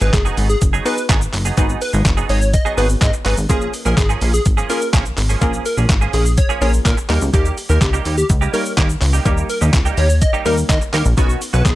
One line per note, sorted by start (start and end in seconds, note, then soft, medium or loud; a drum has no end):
0.00 0.11 G#1 loud
0.00 0.12 F#3 soft
0.00 0.22 B3 medium
0.00 0.12 B3 medium
0.00 0.22 D#4 medium
0.00 0.12 D#4 medium
0.00 0.22 F#4 medium
0.00 0.22 G#4 medium
0.00 0.11 G#4 medium
0.00 0.22 B4 medium
0.00 0.11 B4 medium
0.00 shaker medium
0.13 0.32 F#1 loud
0.13 0.23 G#4 medium
0.13 muted clean electric guitar stroke soft
0.13 kick loud
0.13 snare medium
0.13 clap loud
0.13 closed hi-hat medium
0.13 shaker medium
0.25 0.36 F#3 medium
0.25 0.36 B3 medium
0.25 0.37 D#4 medium
0.25 0.37 G#4 medium
0.25 shaker medium
0.37 0.56 G#1 loud
0.37 0.47 F#3 medium
0.37 0.48 B3 medium
0.37 0.48 D#4 medium
0.37 0.48 G#4 medium
0.37 open hi-hat medium
0.37 shaker soft
0.49 0.59 G#4 medium
0.49 shaker medium
0.61 0.80 F#1 loud
0.61 muted clean electric guitar stroke soft
0.61 kick loud
0.61 closed hi-hat medium
0.61 shaker medium
0.73 0.84 F#3 medium
0.73 0.85 B3 medium
0.73 0.85 D#4 medium
0.73 0.85 G#4 medium
0.73 shaker medium
0.85 0.95 F#3 medium
0.85 1.28 B3 medium
0.85 0.96 B3 medium
0.85 1.28 D#4 medium
0.85 0.96 D#4 medium
0.85 1.28 F#4 medium
0.85 1.28 G#4 medium
0.85 0.96 G#4 medium
0.85 1.04 B4 medium
0.85 1.28 B4 medium
0.85 open hi-hat medium
0.85 shaker medium
0.97 muted clean electric guitar stroke medium
0.97 shaker medium
1.09 1.28 G#1 loud
1.09 1.22 F#3 loud
1.09 1.21 B3 loud
1.09 1.21 D#4 medium
1.09 1.20 G#4 loud
1.09 kick loud
1.09 snare loud
1.09 clap loud
1.09 closed hi-hat medium
1.09 shaker medium
1.21 muted clean electric guitar stroke soft
1.21 shaker medium
1.33 1.52 F#1 loud
1.33 muted clean electric guitar stroke soft
1.33 clap medium
1.33 open hi-hat medium
1.33 shaker medium
1.45 1.56 F#3 medium
1.45 1.56 B3 medium
1.45 1.56 D#4 medium
1.45 1.55 G#4 medium
1.45 shaker medium
1.57 1.76 G#1 loud
1.57 1.79 F#3 medium
1.57 2.14 B3 medium
1.57 1.80 B3 medium
1.57 2.14 D#4 medium
1.57 1.80 D#4 loud
1.57 2.14 F#4 medium
1.57 2.14 G#4 medium
1.57 1.80 G#4 loud
1.57 2.14 B4 loud
1.57 kick loud
1.57 closed hi-hat medium
1.57 shaker medium
1.69 shaker medium
1.81 1.91 B4 medium
1.81 muted clean electric guitar stroke soft
1.81 open hi-hat medium
1.81 shaker medium
1.93 2.03 G#1 loud
1.93 2.04 F#3 medium
1.93 2.04 B3 medium
1.93 2.04 D#4 medium
1.93 2.03 G#4 medium
1.93 shaker medium
2.05 2.24 F#1 loud
2.05 muted clean electric guitar stroke soft
2.05 kick loud
2.05 snare medium
2.05 clap loud
2.05 closed hi-hat medium
2.05 shaker medium
2.17 2.28 F#3 medium
2.17 2.28 B3 medium
2.17 2.29 D#4 medium
2.17 2.29 G#4 medium
2.17 shaker medium
2.29 2.57 G#1 loud
2.29 2.39 F#3 medium
2.29 2.40 B3 medium
2.29 2.40 D#4 medium
2.29 2.40 G#4 medium
2.29 2.48 C#5 medium
2.29 open hi-hat medium
2.29 shaker soft
2.41 muted clean electric guitar stroke medium
2.41 shaker medium
2.53 2.72 D#5 loud
2.53 muted clean electric guitar stroke soft
2.53 kick loud
2.53 closed hi-hat medium
2.53 shaker medium
2.65 2.76 F#3 medium
2.65 2.77 B3 medium
2.65 2.77 D#4 medium
2.65 2.78 G#4 loud
2.65 shaker medium
2.77 2.96 G#1 loud
2.77 2.87 F#3 medium
2.77 3.20 B3 medium
2.77 2.88 B3 medium
2.77 3.20 D#4 medium
2.77 2.88 D#4 medium
2.77 3.20 F#4 medium
2.77 3.20 G#4 medium
2.77 2.88 G#4 medium
2.77 2.87 B4 medium
2.77 3.20 B4 medium
2.77 open hi-hat medium
2.77 shaker medium
2.89 muted clean electric guitar stroke soft
2.89 shaker medium
3.01 3.11 G#2 loud
3.01 3.11 D#5 medium
3.01 muted clean electric guitar stroke soft
3.01 kick loud
3.01 snare loud
3.01 clap loud
3.01 closed hi-hat medium
3.01 shaker medium
3.13 muted clean electric guitar stroke soft
3.13 shaker medium
3.25 3.35 G#1 loud
3.25 3.38 F#3 medium
3.25 3.37 B3 medium
3.25 3.37 D#4 loud
3.25 3.36 G#4 loud
3.25 3.35 B4 medium
3.25 clap medium
3.25 open hi-hat medium
3.25 shaker medium
3.37 3.47 G#1 loud
3.37 shaker medium
3.49 3.68 A#1 loud
3.49 3.71 F3 medium
3.49 4.06 A#3 medium
3.49 3.72 A#3 medium
3.49 4.06 C#4 medium
3.49 3.72 C#4 medium
3.49 4.06 F4 medium
3.49 3.68 G#4 loud
3.49 4.06 G#4 medium
3.49 3.72 G#4 loud
3.49 4.06 A#4 medium
3.49 kick loud
3.49 closed hi-hat medium
3.49 shaker medium
3.61 shaker medium
3.73 muted clean electric guitar stroke soft
3.73 open hi-hat medium
3.73 shaker medium
3.85 3.95 A#1 loud
3.85 3.96 F3 medium
3.85 3.96 A#3 medium
3.85 3.96 C#4 medium
3.85 3.95 G#4 medium
3.85 3.95 A#4 medium
3.85 shaker medium
3.97 4.16 G#1 loud
3.97 4.07 G#4 medium
3.97 kick loud
3.97 snare medium
3.97 clap loud
3.97 closed hi-hat medium
3.97 shaker medium
4.09 4.20 F3 medium
4.09 4.21 A#3 medium
4.09 4.21 C#4 medium
4.09 4.22 G#4 medium
4.09 shaker medium
4.21 4.40 A#1 loud
4.21 4.31 F3 medium
4.21 4.32 A#3 medium
4.21 4.32 C#4 medium
4.21 4.32 G#4 medium
4.21 open hi-hat medium
4.21 shaker soft
4.33 4.43 G#4 medium
4.33 muted clean electric guitar stroke soft
4.33 shaker medium
4.45 4.64 G#1 loud
4.45 muted clean electric guitar stroke soft
4.45 kick loud
4.45 closed hi-hat medium
4.45 shaker medium
4.57 4.68 F3 medium
4.57 4.69 A#3 medium
4.57 4.69 C#4 medium
4.57 4.70 G#4 medium
4.57 shaker medium
4.69 4.79 F3 medium
4.69 5.12 A#3 medium
4.69 4.80 A#3 medium
4.69 5.12 C#4 medium
4.69 4.80 C#4 medium
4.69 5.12 F4 medium
4.69 5.12 G#4 medium
4.69 4.80 G#4 medium
4.69 4.88 A#4 medium
4.69 5.12 A#4 medium
4.69 open hi-hat medium
4.69 shaker medium
4.81 muted clean electric guitar stroke soft
4.81 shaker medium
4.93 5.12 A#1 loud
4.93 5.06 F3 medium
4.93 5.05 A#3 medium
4.93 5.05 C#4 medium
4.93 5.04 G#4 medium
4.93 kick loud
4.93 snare medium
4.93 clap loud
4.93 closed hi-hat medium
4.93 shaker medium
5.05 muted clean electric guitar stroke medium
5.05 shaker medium
5.17 5.36 G#1 medium
5.17 muted clean electric guitar stroke soft
5.17 clap medium
5.17 open hi-hat medium
5.17 shaker medium
5.29 5.40 F3 medium
5.29 5.40 A#3 medium
5.29 5.40 C#4 medium
5.29 5.39 G#4 medium
5.29 shaker medium
5.41 5.60 A#1 loud
5.41 5.63 F3 medium
5.41 5.98 A#3 medium
5.41 5.64 A#3 loud
5.41 5.98 C#4 medium
5.41 5.64 C#4 loud
5.41 5.98 F4 medium
5.41 5.98 G#4 medium
5.41 5.64 G#4 loud
5.41 5.98 A#4 loud
5.41 kick loud
5.41 closed hi-hat medium
5.41 shaker medium
5.53 shaker medium
5.65 5.75 A#4 medium
5.65 muted clean electric guitar stroke medium
5.65 open hi-hat medium
5.65 shaker medium
5.77 5.87 A#1 loud
5.77 5.88 F3 medium
5.77 5.88 A#3 medium
5.77 5.88 C#4 medium
5.77 5.87 G#4 medium
5.77 shaker medium
5.89 6.08 G#1 medium
5.89 muted clean electric guitar stroke soft
5.89 kick loud
5.89 snare medium
5.89 clap loud
5.89 closed hi-hat medium
5.89 shaker medium
6.01 6.12 F3 medium
6.01 6.13 A#3 medium
6.01 6.13 C#4 medium
6.01 6.14 G#4 medium
6.01 shaker medium
6.13 6.41 A#1 loud
6.13 6.23 F3 medium
6.13 6.24 A#3 medium
6.13 6.24 C#4 medium
6.13 6.32 G#4 medium
6.13 6.24 G#4 medium
6.13 open hi-hat medium
6.13 shaker medium
6.25 muted clean electric guitar stroke medium
6.25 shaker medium
6.37 6.56 C#5 medium
6.37 muted clean electric guitar stroke soft
6.37 kick loud
6.37 closed hi-hat medium
6.37 shaker medium
6.49 6.60 F3 medium
6.49 6.61 A#3 medium
6.49 6.61 C#4 medium
6.49 6.62 G#4 medium
6.49 shaker medium
6.61 6.80 A#1 medium
6.61 6.71 F3 medium
6.61 7.04 A#3 medium
6.61 6.72 A#3 medium
6.61 7.04 C#4 medium
6.61 6.72 C#4 medium
6.61 7.04 F4 medium
6.61 7.04 G#4 medium
6.61 6.72 G#4 medium
6.61 7.04 A#4 medium
6.61 6.71 C#5 medium
6.61 open hi-hat medium
6.61 shaker medium
6.73 muted clean electric guitar stroke medium
6.73 shaker medium
6.85 6.95 A#2 loud
6.85 6.95 A#4 medium
6.85 muted clean electric guitar stroke soft
6.85 kick loud
6.85 snare medium
6.85 clap loud
6.85 closed hi-hat medium
6.85 shaker medium
6.97 muted clean electric guitar stroke medium
6.97 shaker medium
7.09 7.19 D#2 loud
7.09 7.22 G3 medium
7.09 7.86 G3 medium
7.09 7.86 A#3 medium
7.09 7.21 A#3 medium
7.09 7.86 D#4 medium
7.09 7.21 D#4 medium
7.09 7.86 G4 medium
7.09 7.20 G4 medium
7.09 7.19 A#4 medium
7.09 7.87 A#4 loud
7.09 clap medium
7.09 open hi-hat medium
7.09 shaker medium
7.21 7.31 C#2 medium
7.21 muted clean electric guitar stroke medium
7.21 shaker medium
7.33 7.52 D#2 loud
7.33 7.55 G3 medium
7.33 7.56 A#3 medium
7.33 7.56 D#4 medium
7.33 7.52 G4 loud
7.33 7.56 G4 loud
7.33 kick loud
7.33 closed hi-hat medium
7.33 shaker medium
7.46 shaker medium
7.57 muted clean electric guitar stroke soft
7.57 open hi-hat medium
7.57 shaker medium
7.69 7.79 D#2 loud
7.69 7.80 G3 medium
7.69 7.80 A#3 medium
7.69 7.80 D#4 medium
7.69 7.79 G4 medium
7.69 7.79 A#4 medium
7.69 shaker medium
7.81 8.00 C#2 medium
7.81 7.91 G4 medium
7.81 kick loud
7.81 snare medium
7.81 clap loud
7.81 closed hi-hat medium
7.81 shaker medium
7.93 8.04 G3 medium
7.93 8.05 A#3 medium
7.93 8.05 D#4 medium
7.93 8.05 G4 loud
7.93 shaker medium
8.05 8.24 D#2 medium
8.05 8.15 G3 medium
8.05 8.16 A#3 medium
8.05 8.16 D#4 medium
8.05 8.16 G4 medium
8.05 open hi-hat medium
8.05 shaker medium
8.17 8.27 G4 medium
8.17 muted clean electric guitar stroke soft
8.17 shaker medium
8.29 8.48 C#2 loud
8.29 muted clean electric guitar stroke soft
8.29 kick loud
8.29 closed hi-hat medium
8.29 shaker medium
8.41 8.52 G3 medium
8.41 8.53 A#3 medium
8.41 8.53 D#4 medium
8.41 8.53 G4 medium
8.41 shaker soft
8.53 8.63 G3 medium
8.53 8.96 G3 medium
8.53 8.96 A#3 medium
8.53 8.64 A#3 medium
8.53 8.96 D#4 medium
8.53 8.64 D#4 medium
8.53 8.96 G4 medium
8.53 8.64 G4 medium
8.53 8.72 A#4 medium
8.53 8.96 C#5 medium
8.53 open hi-hat medium
8.53 shaker medium
8.65 muted clean electric guitar stroke medium
8.65 shaker medium
8.77 8.96 D#2 loud
8.77 8.90 G3 medium
8.77 8.89 A#3 medium
8.77 8.89 D#4 medium
8.77 8.88 G4 medium
8.77 kick loud
8.77 snare loud
8.77 clap loud
8.77 closed hi-hat medium
8.77 shaker medium
8.89 muted clean electric guitar stroke soft
8.89 shaker medium
9.01 9.20 C#2 loud
9.01 muted clean electric guitar stroke soft
9.01 clap medium
9.01 open hi-hat medium
9.01 shaker medium
9.13 9.24 G3 medium
9.13 9.24 A#3 medium
9.13 9.24 D#4 medium
9.13 9.23 G4 medium
9.13 shaker medium
9.25 9.44 D#2 loud
9.25 9.47 G3 medium
9.25 9.82 G3 medium
9.25 9.82 A#3 medium
9.25 9.48 A#3 medium
9.25 9.82 D#4 medium
9.25 9.48 D#4 loud
9.25 9.82 G4 medium
9.25 9.48 G4 loud
9.25 9.82 A#4 loud
9.25 kick loud
9.25 closed hi-hat medium
9.25 shaker medium
9.38 shaker medium
9.49 9.59 A#4 medium
9.49 muted clean electric guitar stroke soft
9.49 open hi-hat medium
9.49 shaker medium
9.61 9.71 D#2 loud
9.61 9.72 G3 medium
9.61 9.72 A#3 medium
9.61 9.72 D#4 medium
9.61 9.71 G4 medium
9.61 shaker medium
9.73 9.92 C#2 loud
9.73 kick loud
9.73 snare loud
9.73 clap loud
9.73 closed hi-hat medium
9.73 shaker medium
9.85 9.96 G3 medium
9.85 9.97 A#3 medium
9.85 9.97 D#4 medium
9.85 9.98 G4 medium
9.85 shaker medium
9.97 10.25 D#2 loud
9.97 10.07 G3 medium
9.97 10.08 A#3 medium
9.97 10.08 D#4 medium
9.97 10.08 G4 medium
9.97 10.16 C#5 medium
9.97 open hi-hat medium
9.97 shaker soft
10.09 muted clean electric guitar stroke soft
10.09 shaker medium
10.21 10.40 D#5 medium
10.21 muted clean electric guitar stroke soft
10.21 kick loud
10.21 closed hi-hat medium
10.21 shaker medium
10.33 10.44 G3 medium
10.33 10.45 A#3 medium
10.33 10.45 D#4 medium
10.33 10.46 G4 medium
10.33 shaker soft
10.45 10.64 D#2 medium
10.45 10.55 G3 medium
10.45 10.88 G3 medium
10.45 10.88 A#3 medium
10.45 10.56 A#3 medium
10.45 10.88 D#4 medium
10.45 10.56 D#4 medium
10.45 10.88 G4 medium
10.45 10.56 G4 medium
10.45 10.55 A#4 medium
10.45 10.88 A#4 medium
10.45 open hi-hat medium
10.45 shaker medium
10.58 shaker medium
10.69 10.79 D#3 loud
10.69 10.79 D#5 medium
10.69 muted clean electric guitar stroke soft
10.69 kick loud
10.69 snare medium
10.69 clap loud
10.69 closed hi-hat medium
10.69 shaker medium
10.81 muted clean electric guitar stroke soft
10.81 shaker medium
10.93 11.03 D#2 medium
10.93 11.06 G3 medium
10.93 11.05 A#3 medium
10.93 11.05 D#4 medium
10.93 11.04 G4 loud
10.93 11.03 A#4 medium
10.93 clap medium
10.93 open hi-hat medium
10.93 shaker medium
11.05 11.15 A#1 loud
11.05 muted clean electric guitar stroke medium
11.05 shaker medium
11.17 11.36 B1 loud
11.17 11.39 D#3 loud
11.17 11.74 B3 medium
11.17 11.40 B3 medium
11.17 11.74 C#4 medium
11.17 11.40 C#4 medium
11.17 11.74 D#4 medium
11.17 11.36 F#4 loud
11.17 11.74 F#4 medium
11.17 11.40 F#4 loud
11.17 11.74 B4 medium
11.17 kick loud
11.17 closed hi-hat medium
11.17 shaker medium
11.29 shaker medium
11.41 muted clean electric guitar stroke soft
11.41 open hi-hat medium
11.41 shaker medium
11.53 11.63 B1 loud
11.53 11.64 D#3 medium
11.53 11.64 B3 medium
11.53 11.64 C#4 medium
11.53 11.63 F#4 medium
11.53 11.63 B4 medium
11.53 shaker medium
11.65 11.75 B1 loud
11.65 11.75 G#4 medium
11.65 muted clean electric guitar stroke soft
11.65 kick loud
11.65 snare medium
11.65 clap loud
11.65 closed hi-hat medium
11.65 shaker medium